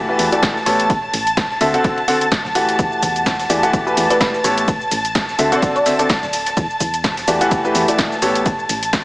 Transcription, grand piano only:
0.09 0.29 E3 medium
0.09 0.29 A3 medium
0.09 0.29 F#4 medium
0.09 0.29 G4 medium
0.09 0.29 B4 loud
0.32 0.56 E3 medium
0.32 0.56 A3 medium
0.32 0.56 F#4 medium
0.32 0.56 G4 medium
0.32 0.56 D5 medium
0.66 0.90 A2 medium
0.66 0.90 B3 medium
0.66 0.90 G4 medium
0.66 0.90 A4 medium
0.66 0.90 C#5 medium
1.61 1.72 D3 medium
1.61 1.72 C4 medium
1.61 1.72 F#4 medium
1.61 1.72 A4 medium
1.61 1.72 E5 loud
1.74 1.97 D3 loud
1.74 1.97 C4 medium
1.74 1.97 F#4 medium
1.74 1.97 A4 loud
1.74 1.97 F#5 loud
2.08 2.24 D3 medium
2.08 2.24 C4 medium
2.08 2.24 F#4 medium
2.08 2.24 A4 medium
2.08 2.24 F#5 loud
2.55 3.47 E3 medium
2.55 3.47 A3 medium
2.55 3.47 F#4 medium
2.55 3.47 G4 medium
2.55 3.47 F#5 medium
3.50 3.61 E3 medium
3.50 3.61 A3 medium
3.50 3.61 F#4 medium
3.50 3.61 G4 medium
3.50 3.61 D5 loud
3.63 3.84 E3 loud
3.63 3.83 A3 loud
3.63 3.84 F#4 medium
3.63 3.83 G4 medium
3.63 3.84 F#5 loud
3.87 4.07 E3 medium
3.87 4.07 A3 medium
3.87 4.07 F#4 medium
3.87 4.07 G4 medium
3.87 4.07 B4 loud
4.10 4.34 E3 medium
4.10 4.34 A3 medium
4.10 4.33 F#4 medium
4.10 4.33 G4 medium
4.10 4.34 D5 medium
4.44 4.68 A2 medium
4.44 4.68 B3 medium
4.44 4.68 G4 medium
4.44 4.68 A4 medium
4.44 4.68 C#5 loud
5.39 5.50 D3 medium
5.39 5.50 C4 medium
5.39 5.50 F#4 medium
5.39 5.50 A4 medium
5.39 5.50 E5 loud
5.52 5.75 D3 loud
5.52 5.75 C4 loud
5.52 5.75 F#4 medium
5.52 5.75 A4 medium
5.52 5.75 F#5 loud
5.86 5.97 D3 medium
5.86 5.97 C4 medium
5.86 5.97 F#4 medium
5.86 5.97 A4 medium
5.86 5.97 E5 medium
5.99 6.13 D3 medium
5.99 6.13 C4 medium
5.99 6.13 F#4 medium
5.99 6.13 A4 medium
5.99 6.13 D5 medium
7.28 7.39 E3 medium
7.28 7.39 A3 medium
7.28 7.39 F#4 medium
7.28 7.39 G4 medium
7.28 7.39 D5 loud
7.41 7.61 E3 loud
7.41 7.62 A3 medium
7.41 7.61 F#4 medium
7.41 7.61 G4 medium
7.41 7.61 F#5 loud
7.65 7.85 E3 medium
7.65 7.85 A3 medium
7.65 7.85 F#4 medium
7.65 7.85 G4 medium
7.65 7.85 B4 loud
7.88 8.12 E3 medium
7.88 8.12 A3 medium
7.88 8.12 F#4 medium
7.88 8.12 G4 medium
7.88 8.12 D5 medium
8.22 8.45 A2 medium
8.22 8.45 B3 medium
8.22 8.45 G4 medium
8.22 8.45 A4 medium
8.22 8.45 C#5 medium

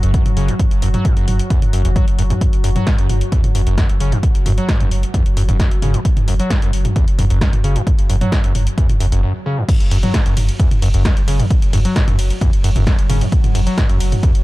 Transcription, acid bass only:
0.03 0.12 F#2 medium
0.14 0.24 F#2 medium
0.37 0.50 C#3 medium
0.49 0.55 F#2 medium
0.82 0.89 F#2 loud
0.94 1.07 F#3 medium
1.05 1.15 F#2 medium
1.17 1.26 F#2 medium
1.50 1.60 E2 loud
1.73 1.83 F#2 medium
1.85 1.91 E2 medium
1.96 2.06 F#3 medium
2.19 2.22 F#2 loud
2.30 2.34 E2 loud
2.64 2.71 F#2 loud
2.76 2.88 F#3 medium
2.87 2.97 F#2 medium
2.99 3.08 F#2 medium
3.32 3.42 E2 loud
3.55 3.61 F#2 loud
3.67 3.76 F#2 medium
3.78 3.87 F#2 medium
4.00 4.14 C#3 medium
4.12 4.18 F#2 medium
4.46 4.52 F#2 loud
4.58 4.70 F#3 medium
4.69 4.78 F#2 medium
4.80 4.89 F#2 medium
5.14 5.24 E2 loud
5.37 5.43 F#2 loud
5.49 5.58 F#2 medium
5.60 5.69 F#2 medium
5.82 5.96 C#3 medium
5.94 6.00 F#2 medium
6.28 6.34 F#2 loud
6.40 6.52 F#3 medium
6.50 6.60 F#2 medium
6.62 6.71 F#2 medium
6.96 7.06 E2 loud
7.19 7.25 F#2 loud
7.30 7.39 F#2 medium
7.41 7.51 F#2 medium
7.64 7.77 C#3 medium
7.76 7.82 F#2 medium
8.10 8.16 F#2 loud
8.21 8.34 F#3 medium
8.32 8.42 F#2 medium
8.44 8.53 F#2 medium
8.78 8.87 E2 loud
9.00 9.07 F#2 loud
9.12 9.21 F#2 medium
9.23 9.33 F#2 medium
9.46 9.59 C#3 medium
9.58 9.64 F#2 medium
9.91 9.98 F#2 loud
10.03 10.16 F#3 medium
10.14 10.24 F#2 medium
10.26 10.35 F#2 medium
10.60 10.69 E2 loud
10.82 10.89 F#2 loud
10.94 11.03 F#2 medium
11.28 11.41 C#3 medium
11.40 11.46 F#2 medium
11.73 11.80 F#2 loud
11.85 11.97 F#3 medium
11.96 12.06 F#2 medium
12.08 12.17 F#2 medium
12.41 12.51 E2 loud
12.64 12.71 F#2 loud
12.76 12.85 F#2 medium
12.87 12.97 F#2 medium
13.10 13.23 C#3 medium
13.21 13.27 F#2 medium
13.55 13.61 F#2 loud
13.67 13.79 F#3 medium
13.78 13.87 F#2 medium
13.89 13.98 F#2 medium
14.23 14.33 E2 loud

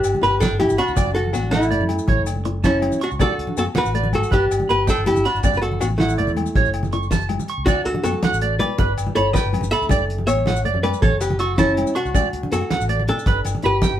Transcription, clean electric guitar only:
0.23 0.35 B5 medium
0.41 0.53 G5 medium
0.78 0.91 B5 medium
0.97 1.09 D5 medium
1.52 1.65 F#5 medium
1.70 1.83 D5 medium
2.08 2.21 C#5 medium
2.45 muted clean electric guitar stroke medium
2.64 2.77 A5 medium
3.01 3.14 C#6 medium
3.20 3.33 D5 medium
3.76 3.88 F#5 medium
3.95 4.07 D5 medium
4.31 4.44 B4 medium
4.69 4.82 B5 medium
4.88 5.00 G5 medium
5.25 5.38 B5 medium
5.44 5.57 D5 medium
6.00 6.13 F#5 medium
6.18 6.31 D5 medium
6.56 6.69 C#5 medium
6.93 7.05 C#6 medium
7.12 7.24 A5 medium
7.50 7.62 C#6 medium
7.68 7.80 D5 medium
8.24 8.37 F#5 medium
8.42 8.54 D5 medium
8.79 8.92 B4 medium
9.16 9.29 B5 medium
9.35 9.48 G5 medium
9.73 9.85 B5 medium
9.91 10.03 D5 medium
10.47 10.60 F#5 medium
10.65 10.78 D5 medium
11.02 11.15 C#5 medium
11.40 11.53 C#6 medium
11.59 11.71 A5 medium
11.95 12.08 C#6 medium
12.15 12.27 D5 medium
12.71 12.83 F#5 medium
12.89 13.02 D5 medium
13.27 13.39 B4 medium
13.64 13.76 B5 medium
13.82 13.95 G5 medium

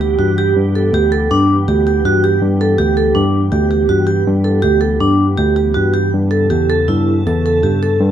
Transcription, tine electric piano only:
0.00 0.15 D2 loud
0.19 0.53 G2 loud
0.56 0.90 G2 medium
0.93 1.27 D2 loud
1.31 1.64 G2 medium
1.68 2.01 D2 loud
2.05 2.38 G2 medium
2.41 2.75 G2 loud
2.79 3.12 D2 loud
3.15 3.48 G2 loud
3.52 3.85 D2 loud
3.89 4.22 G2 medium
4.27 4.60 G2 loud
4.63 4.97 D2 loud
5.01 5.34 G2 loud
5.38 5.72 D2 loud
5.76 6.10 G2 medium
6.13 6.47 G2 medium
6.51 6.85 E2 loud
6.89 7.22 G2 loud
7.26 7.60 E2 loud
7.63 7.97 G2 loud
8.01 8.12 G2 loud

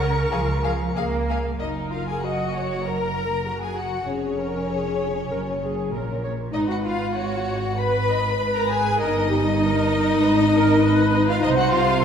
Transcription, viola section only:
0.00 1.24 A#4 medium
1.60 2.19 A#4 medium
2.22 2.54 D#5 medium
2.54 2.85 C#5 soft
2.85 3.47 A#4 medium
3.46 4.08 F#4 soft
4.08 4.38 G#4 medium
4.38 4.70 A#4 medium
4.69 5.31 G#4 medium
5.31 5.39 A#4 medium
5.62 5.92 G#4 medium
5.93 6.24 A#4 medium
6.24 6.32 C#5 soft
6.54 7.15 B4 medium
7.15 7.77 C#5 medium
7.78 8.09 B4 medium
8.09 8.17 D#5 medium
8.40 8.99 B4 medium
9.00 9.30 A#4 medium
9.30 9.38 G4 medium
9.60 10.21 A#4 medium
10.22 10.30 B4 medium
10.52 10.82 A#4 medium
10.81 11.42 B4 medium
11.44 12.04 C5 medium

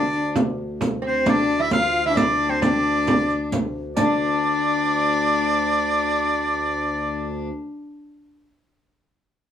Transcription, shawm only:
0.00 0.33 D5 medium
1.07 1.31 C5 loud
1.30 1.63 D5 loud
1.62 1.72 E5 loud
1.73 2.04 F5 loud
2.06 2.19 E5 loud
2.17 2.52 D5 loud
2.50 2.62 C5 loud
2.62 3.49 D5 loud
3.97 7.45 D5 loud

